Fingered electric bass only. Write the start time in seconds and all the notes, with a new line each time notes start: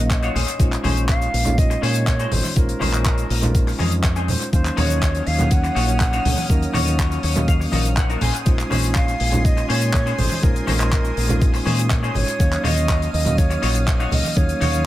Already playing: A#1
0.35 A#1
0.60 A#1
0.84 A#1
1.34 A#1
1.83 A#2
2.32 G#1
2.56 A#1
2.81 A#1
3.30 A#1
3.79 F2
4.53 D#2
4.78 D#2
5.27 D#2
5.76 A#1
6.25 C#2
6.50 D#2
6.74 D#2
7.24 D#2
7.73 A#1
8.22 A#1
8.46 A#1
8.71 A#1
9.20 A#1
9.70 A#2
10.19 G#1
10.43 A#1
10.68 A#1
11.17 A#1
11.66 A#2
12.15 G#1
12.40 D#2
12.65 D#2
13.14 D#2
13.63 A#1
14.12 C#2
14.37 D#2
14.61 D#2